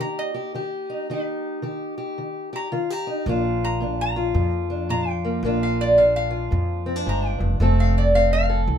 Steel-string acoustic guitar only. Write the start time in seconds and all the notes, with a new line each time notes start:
Already playing: A#3 D#4 G4
0.00 D#3
0.34 G4
0.54 D#3 G4
0.90 D#4
1.10 D#3 D#4 G4
1.62 D#3 G4
1.98 G4
2.18 D#3
2.53 G4
2.72 D#3 F4
2.90 G4
3.07 D#4
3.27 A#2 A#3 D4 F4
3.81 A#2 D4
4.16 F4
4.35 A#2
4.70 D4
4.89 A#2 F4
5.25 A#3
5.44 A#2 A#3 D4 F4
5.97 A#2 D4
6.30 F4
6.51 A#2
6.86 C4
6.96 D4
7.06 G#2
7.38 G2
7.60 F2 A3 C4 A4
8.14 F2 C4
8.49 A4
8.68 F2